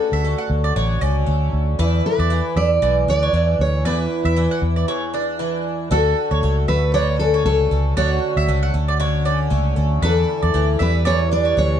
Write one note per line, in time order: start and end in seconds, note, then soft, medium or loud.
0.00 0.76 D3 medium
0.00 0.23 A3 medium
0.00 1.01 C#4 medium
0.00 1.79 F#4 medium
0.00 0.73 A4 medium
0.12 0.33 D2 medium
0.12 0.24 E5 medium
0.24 1.25 A3 medium
0.38 0.50 F#5 medium
0.50 0.71 D2 medium
0.64 0.75 D5 medium
0.76 0.97 A1 loud
0.76 2.30 D3 medium
0.76 1.01 C#5 medium
1.01 1.23 C#2 medium
1.01 1.85 C#4 medium
1.01 1.15 D5 medium
1.26 1.49 D2 medium
1.26 1.84 A3 medium
1.53 1.74 D2 medium
1.79 2.81 E2 medium
1.79 2.00 E2 loud
1.79 3.85 E4 medium
1.79 2.04 B4 medium
2.06 2.57 B4 medium
2.19 2.40 E2 medium
2.19 2.44 D5 medium
2.30 3.32 E3 medium
2.56 2.77 E2 medium
2.56 3.09 D5 loud
2.56 2.70 E5 medium
2.82 3.03 B1 loud
2.82 3.84 E2 medium
2.82 2.96 D5 medium
3.07 3.29 D2 medium
3.07 5.13 D4 medium
3.07 3.57 D5 loud
3.23 3.47 C#5 medium
3.33 3.54 E2 medium
3.33 4.35 E3 medium
3.59 3.85 D2 medium
3.59 3.87 C#5 medium
3.85 4.06 E2 loud
3.85 4.87 E2 medium
3.85 5.91 E4 medium
3.85 4.85 B4 medium
3.85 3.99 D5 loud
4.25 4.46 E2 medium
4.25 4.36 E5 medium
4.36 5.38 E3 medium
4.51 4.62 F#5 medium
4.62 4.83 E2 medium
4.76 4.87 D5 medium
4.88 5.97 E2 medium
4.88 5.13 C#5 medium
5.14 7.20 D4 medium
5.14 5.28 D5 medium
5.39 5.90 E3 medium
5.91 6.12 D2 loud
5.91 6.93 D3 medium
5.91 7.96 F#4 medium
5.91 6.16 A4 medium
5.91 6.68 A4 medium
6.31 6.41 D2 medium
6.31 6.56 C#5 medium
6.43 6.64 C#2 medium
6.43 6.67 A3 medium
6.68 7.42 D2 medium
6.68 7.44 A3 medium
6.68 6.94 B4 medium
6.68 6.82 E5 medium
6.94 7.96 D3 medium
6.94 7.18 C#5 loud
6.94 7.08 D5 medium
7.19 9.24 C#4 medium
7.19 7.44 A4 medium
7.34 7.58 C#5 medium
7.45 7.66 C#2 medium
7.45 7.70 A3 medium
7.45 7.97 A4 medium
7.71 7.92 C#2 medium
7.71 8.47 A3 medium
7.97 8.18 D2 loud
7.97 8.99 D3 medium
7.97 10.03 F#4 medium
7.97 9.48 C#5 medium
7.97 8.10 D5 loud
8.37 8.46 D2 medium
8.37 8.48 E5 medium
8.48 8.69 C#2 medium
8.48 8.73 A3 medium
8.63 8.74 F#5 medium
8.74 9.47 D2 medium
8.74 9.49 A3 medium
8.88 8.99 D5 medium
9.00 10.54 D3 medium
9.00 9.24 C#5 medium
9.25 10.08 C#4 medium
9.25 9.39 D5 medium
9.50 9.72 C#2 medium
9.50 9.75 A3 medium
9.76 9.98 D2 medium
9.76 10.08 A3 medium
10.02 10.24 E2 loud
10.02 11.04 E2 medium
10.02 11.80 E4 medium
10.02 10.82 A4 medium
10.02 10.27 B4 medium
10.42 10.52 E2 medium
10.42 10.67 D5 medium
10.54 10.75 D2 medium
10.54 11.56 E3 medium
10.79 11.53 E2 medium
10.79 11.80 G3 medium
10.79 11.06 B4 medium
10.79 10.93 E5 medium
11.05 11.80 E2 medium
11.05 11.32 C#5 loud
11.05 11.19 D5 medium
11.31 11.80 D4 medium
11.31 11.58 D5 loud
11.45 11.70 C#5 medium
11.57 11.78 D2 medium
11.57 11.80 E3 medium
11.57 11.80 C#5 loud